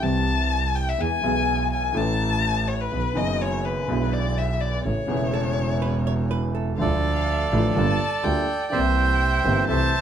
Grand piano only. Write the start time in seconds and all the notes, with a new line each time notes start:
0.00 C2 C3 E3 G3 C4 G4
0.98 E2 E3 G#3 B3 G#4
1.21 B1 B2 E3 G#3 B3
1.26 G#4
1.92 A1 A2 E3 A3 C#4 A4
2.91 B1 B2 D#3 F#3 B3 F#4
3.13 F#1 F#2 D#3 F#3 B3 F#4
3.87 B1 B2 D3 G#3 B3 E4
4.84 A1 A2 C#3 E3 A3 E4
5.06 E1 E2 C#3 E3 A3
5.10 E4
6.77 D2 D3 F3 A3 F4
7.52 A1 A2 D3 F3 A3 F4
7.75 G1 G2 D3 G3 A#3 F4
8.23 D2 D3 G3 A#3 F4
8.70 C2 C3 E3 A#3 C4
8.74 G4
9.44 G1 G2 E3 A#3 C4 G4
9.68 C2 C3 E3 A3 C4 A4